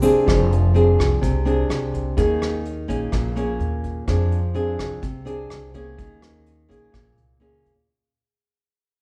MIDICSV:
0, 0, Header, 1, 4, 480
1, 0, Start_track
1, 0, Key_signature, -4, "minor"
1, 0, Tempo, 476190
1, 270, Time_signature, 4, 2, 24, 8
1, 9082, End_track
2, 0, Start_track
2, 0, Title_t, "Nylon-string guitar"
2, 0, Program_c, 0, 24
2, 0, Note_on_c, 0, 48, 57
2, 19, Note_on_c, 0, 60, 61
2, 27, Note_on_c, 0, 62, 56
2, 32, Note_on_c, 0, 68, 63
2, 245, Note_off_c, 0, 48, 0
2, 265, Note_on_c, 0, 53, 56
2, 724, Note_off_c, 0, 60, 0
2, 728, Note_off_c, 0, 62, 0
2, 730, Note_off_c, 0, 68, 0
2, 749, Note_on_c, 0, 60, 55
2, 757, Note_on_c, 0, 62, 51
2, 763, Note_on_c, 0, 68, 60
2, 1202, Note_off_c, 0, 53, 0
2, 1224, Note_on_c, 0, 48, 54
2, 1430, Note_off_c, 0, 60, 0
2, 1434, Note_off_c, 0, 62, 0
2, 1435, Note_off_c, 0, 68, 0
2, 1465, Note_on_c, 0, 60, 60
2, 1470, Note_on_c, 0, 62, 53
2, 1475, Note_on_c, 0, 68, 61
2, 2147, Note_off_c, 0, 60, 0
2, 2150, Note_off_c, 0, 62, 0
2, 2152, Note_off_c, 0, 68, 0
2, 2161, Note_off_c, 0, 48, 0
2, 2186, Note_on_c, 0, 51, 55
2, 2186, Note_on_c, 0, 58, 53
2, 2191, Note_on_c, 0, 61, 55
2, 2193, Note_on_c, 0, 68, 63
2, 2662, Note_off_c, 0, 58, 0
2, 2666, Note_off_c, 0, 61, 0
2, 2666, Note_off_c, 0, 68, 0
2, 2904, Note_on_c, 0, 58, 54
2, 2909, Note_on_c, 0, 61, 50
2, 2912, Note_on_c, 0, 68, 60
2, 3122, Note_off_c, 0, 51, 0
2, 3152, Note_on_c, 0, 46, 53
2, 3346, Note_off_c, 0, 58, 0
2, 3349, Note_off_c, 0, 61, 0
2, 3350, Note_off_c, 0, 68, 0
2, 3386, Note_on_c, 0, 58, 59
2, 3392, Note_on_c, 0, 61, 56
2, 3395, Note_on_c, 0, 68, 58
2, 4068, Note_off_c, 0, 58, 0
2, 4068, Note_off_c, 0, 61, 0
2, 4072, Note_off_c, 0, 68, 0
2, 4084, Note_off_c, 0, 46, 0
2, 4107, Note_on_c, 0, 53, 56
2, 4111, Note_on_c, 0, 60, 54
2, 4115, Note_on_c, 0, 62, 58
2, 4116, Note_on_c, 0, 68, 59
2, 4417, Note_off_c, 0, 60, 0
2, 4417, Note_off_c, 0, 62, 0
2, 4420, Note_off_c, 0, 68, 0
2, 4580, Note_on_c, 0, 60, 54
2, 4583, Note_on_c, 0, 62, 54
2, 4590, Note_on_c, 0, 68, 59
2, 5043, Note_off_c, 0, 53, 0
2, 5058, Note_on_c, 0, 48, 52
2, 5060, Note_off_c, 0, 60, 0
2, 5061, Note_off_c, 0, 62, 0
2, 5065, Note_off_c, 0, 68, 0
2, 5292, Note_on_c, 0, 60, 52
2, 5300, Note_on_c, 0, 62, 57
2, 5307, Note_on_c, 0, 68, 60
2, 5740, Note_off_c, 0, 60, 0
2, 5745, Note_off_c, 0, 62, 0
2, 5748, Note_off_c, 0, 68, 0
2, 5786, Note_on_c, 0, 58, 53
2, 5788, Note_on_c, 0, 61, 61
2, 5794, Note_on_c, 0, 68, 67
2, 5998, Note_off_c, 0, 48, 0
2, 6023, Note_on_c, 0, 51, 56
2, 6708, Note_off_c, 0, 58, 0
2, 6710, Note_off_c, 0, 61, 0
2, 6711, Note_off_c, 0, 68, 0
2, 6739, Note_on_c, 0, 58, 53
2, 6744, Note_on_c, 0, 61, 49
2, 6751, Note_on_c, 0, 68, 66
2, 6961, Note_off_c, 0, 51, 0
2, 6978, Note_on_c, 0, 46, 54
2, 7425, Note_off_c, 0, 58, 0
2, 7428, Note_off_c, 0, 61, 0
2, 7429, Note_off_c, 0, 68, 0
2, 7459, Note_on_c, 0, 58, 59
2, 7467, Note_on_c, 0, 61, 56
2, 7471, Note_on_c, 0, 68, 61
2, 7773, Note_off_c, 0, 58, 0
2, 7775, Note_off_c, 0, 61, 0
2, 7779, Note_off_c, 0, 68, 0
2, 7919, Note_off_c, 0, 46, 0
2, 9082, End_track
3, 0, Start_track
3, 0, Title_t, "Upright bass"
3, 0, Program_c, 1, 32
3, 36, Note_on_c, 1, 29, 75
3, 256, Note_off_c, 1, 29, 0
3, 282, Note_on_c, 1, 29, 87
3, 954, Note_off_c, 1, 29, 0
3, 999, Note_on_c, 1, 36, 81
3, 1217, Note_off_c, 1, 36, 0
3, 1237, Note_on_c, 1, 36, 88
3, 1679, Note_off_c, 1, 36, 0
3, 1707, Note_on_c, 1, 36, 84
3, 2153, Note_off_c, 1, 36, 0
3, 2193, Note_on_c, 1, 39, 96
3, 2869, Note_off_c, 1, 39, 0
3, 2915, Note_on_c, 1, 34, 86
3, 3134, Note_off_c, 1, 34, 0
3, 3153, Note_on_c, 1, 34, 83
3, 3596, Note_off_c, 1, 34, 0
3, 3625, Note_on_c, 1, 39, 82
3, 4071, Note_off_c, 1, 39, 0
3, 4112, Note_on_c, 1, 41, 90
3, 4789, Note_off_c, 1, 41, 0
3, 4833, Note_on_c, 1, 36, 74
3, 5053, Note_off_c, 1, 36, 0
3, 5070, Note_on_c, 1, 36, 77
3, 5515, Note_off_c, 1, 36, 0
3, 5552, Note_on_c, 1, 36, 90
3, 5995, Note_off_c, 1, 36, 0
3, 6036, Note_on_c, 1, 39, 94
3, 6711, Note_off_c, 1, 39, 0
3, 6759, Note_on_c, 1, 34, 78
3, 6977, Note_off_c, 1, 34, 0
3, 6995, Note_on_c, 1, 34, 79
3, 7214, Note_off_c, 1, 34, 0
3, 7233, Note_on_c, 1, 36, 76
3, 7447, Note_off_c, 1, 36, 0
3, 7463, Note_on_c, 1, 37, 74
3, 7681, Note_off_c, 1, 37, 0
3, 7717, Note_on_c, 1, 39, 62
3, 7929, Note_off_c, 1, 39, 0
3, 9082, End_track
4, 0, Start_track
4, 0, Title_t, "Drums"
4, 24, Note_on_c, 9, 82, 56
4, 38, Note_on_c, 9, 36, 23
4, 43, Note_on_c, 9, 42, 37
4, 125, Note_off_c, 9, 82, 0
4, 139, Note_off_c, 9, 36, 0
4, 144, Note_off_c, 9, 42, 0
4, 280, Note_on_c, 9, 36, 59
4, 288, Note_on_c, 9, 37, 57
4, 288, Note_on_c, 9, 42, 51
4, 381, Note_off_c, 9, 36, 0
4, 389, Note_off_c, 9, 37, 0
4, 389, Note_off_c, 9, 42, 0
4, 527, Note_on_c, 9, 42, 43
4, 628, Note_off_c, 9, 42, 0
4, 762, Note_on_c, 9, 42, 42
4, 862, Note_off_c, 9, 42, 0
4, 1000, Note_on_c, 9, 36, 22
4, 1008, Note_on_c, 9, 37, 58
4, 1008, Note_on_c, 9, 42, 44
4, 1101, Note_off_c, 9, 36, 0
4, 1109, Note_off_c, 9, 37, 0
4, 1109, Note_off_c, 9, 42, 0
4, 1239, Note_on_c, 9, 36, 54
4, 1241, Note_on_c, 9, 42, 56
4, 1340, Note_off_c, 9, 36, 0
4, 1342, Note_off_c, 9, 42, 0
4, 1480, Note_on_c, 9, 42, 45
4, 1581, Note_off_c, 9, 42, 0
4, 1716, Note_on_c, 9, 37, 57
4, 1716, Note_on_c, 9, 42, 46
4, 1817, Note_off_c, 9, 37, 0
4, 1817, Note_off_c, 9, 42, 0
4, 1957, Note_on_c, 9, 36, 22
4, 1960, Note_on_c, 9, 42, 42
4, 2058, Note_off_c, 9, 36, 0
4, 2061, Note_off_c, 9, 42, 0
4, 2191, Note_on_c, 9, 42, 59
4, 2196, Note_on_c, 9, 36, 55
4, 2292, Note_off_c, 9, 42, 0
4, 2296, Note_off_c, 9, 36, 0
4, 2440, Note_on_c, 9, 37, 59
4, 2440, Note_on_c, 9, 42, 45
4, 2541, Note_off_c, 9, 37, 0
4, 2541, Note_off_c, 9, 42, 0
4, 2674, Note_on_c, 9, 42, 39
4, 2775, Note_off_c, 9, 42, 0
4, 2915, Note_on_c, 9, 36, 22
4, 2919, Note_on_c, 9, 42, 40
4, 3015, Note_off_c, 9, 36, 0
4, 3020, Note_off_c, 9, 42, 0
4, 3147, Note_on_c, 9, 37, 52
4, 3147, Note_on_c, 9, 42, 54
4, 3153, Note_on_c, 9, 36, 54
4, 3248, Note_off_c, 9, 37, 0
4, 3248, Note_off_c, 9, 42, 0
4, 3254, Note_off_c, 9, 36, 0
4, 3394, Note_on_c, 9, 42, 39
4, 3495, Note_off_c, 9, 42, 0
4, 3631, Note_on_c, 9, 42, 37
4, 3731, Note_off_c, 9, 42, 0
4, 3868, Note_on_c, 9, 42, 37
4, 3871, Note_on_c, 9, 36, 22
4, 3969, Note_off_c, 9, 42, 0
4, 3972, Note_off_c, 9, 36, 0
4, 4109, Note_on_c, 9, 37, 53
4, 4109, Note_on_c, 9, 42, 53
4, 4111, Note_on_c, 9, 36, 58
4, 4210, Note_off_c, 9, 37, 0
4, 4210, Note_off_c, 9, 42, 0
4, 4212, Note_off_c, 9, 36, 0
4, 4353, Note_on_c, 9, 42, 41
4, 4454, Note_off_c, 9, 42, 0
4, 4591, Note_on_c, 9, 42, 41
4, 4692, Note_off_c, 9, 42, 0
4, 4829, Note_on_c, 9, 36, 22
4, 4831, Note_on_c, 9, 37, 55
4, 4831, Note_on_c, 9, 42, 39
4, 4930, Note_off_c, 9, 36, 0
4, 4932, Note_off_c, 9, 37, 0
4, 4932, Note_off_c, 9, 42, 0
4, 5067, Note_on_c, 9, 42, 52
4, 5068, Note_on_c, 9, 36, 56
4, 5168, Note_off_c, 9, 42, 0
4, 5169, Note_off_c, 9, 36, 0
4, 5308, Note_on_c, 9, 42, 44
4, 5409, Note_off_c, 9, 42, 0
4, 5548, Note_on_c, 9, 37, 62
4, 5548, Note_on_c, 9, 42, 44
4, 5648, Note_off_c, 9, 37, 0
4, 5648, Note_off_c, 9, 42, 0
4, 5791, Note_on_c, 9, 42, 41
4, 5792, Note_on_c, 9, 36, 20
4, 5892, Note_off_c, 9, 42, 0
4, 5893, Note_off_c, 9, 36, 0
4, 6033, Note_on_c, 9, 36, 56
4, 6036, Note_on_c, 9, 42, 54
4, 6134, Note_off_c, 9, 36, 0
4, 6136, Note_off_c, 9, 42, 0
4, 6274, Note_on_c, 9, 37, 54
4, 6274, Note_on_c, 9, 42, 43
4, 6375, Note_off_c, 9, 37, 0
4, 6375, Note_off_c, 9, 42, 0
4, 6515, Note_on_c, 9, 42, 45
4, 6616, Note_off_c, 9, 42, 0
4, 6757, Note_on_c, 9, 36, 22
4, 6763, Note_on_c, 9, 42, 42
4, 6858, Note_off_c, 9, 36, 0
4, 6864, Note_off_c, 9, 42, 0
4, 6994, Note_on_c, 9, 37, 56
4, 6994, Note_on_c, 9, 42, 47
4, 6996, Note_on_c, 9, 36, 56
4, 7095, Note_off_c, 9, 37, 0
4, 7095, Note_off_c, 9, 42, 0
4, 7097, Note_off_c, 9, 36, 0
4, 7234, Note_on_c, 9, 42, 39
4, 7334, Note_off_c, 9, 42, 0
4, 7474, Note_on_c, 9, 42, 38
4, 7575, Note_off_c, 9, 42, 0
4, 7716, Note_on_c, 9, 36, 20
4, 7718, Note_on_c, 9, 42, 35
4, 7817, Note_off_c, 9, 36, 0
4, 7819, Note_off_c, 9, 42, 0
4, 9082, End_track
0, 0, End_of_file